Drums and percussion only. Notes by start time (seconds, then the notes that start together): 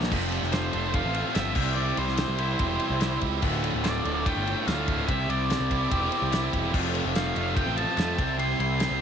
0.03 snare
0.12 kick, crash
0.32 ride
0.43 snare
0.53 snare, clap, ride
0.73 ride
0.94 kick, ride
1.15 ride
1.35 snare, clap, ride
1.55 kick, crash
1.97 ride
2.08 snare
2.17 snare, clap, ride
2.38 ride
2.59 kick, ride
2.80 ride
3.01 snare, clap, ride
3.21 kick, ride
3.42 kick, crash
3.64 ride
3.84 snare, clap, ride
4.05 ride
4.26 kick, ride
4.47 ride
4.68 snare, clap, ride
4.88 kick, ride
5.08 kick, ride
5.30 ride
5.50 snare, clap, ride
5.71 kick, ride
5.91 kick, ride
6.12 ride
6.33 snare, clap, ride
6.53 kick, ride
6.74 kick, crash
6.95 ride
7.15 snare, clap, ride
7.36 ride
7.57 kick, ride
7.77 ride
7.97 snare, clap, ride
8.19 kick, ride
8.39 ride
8.60 ride
8.80 snare, clap, ride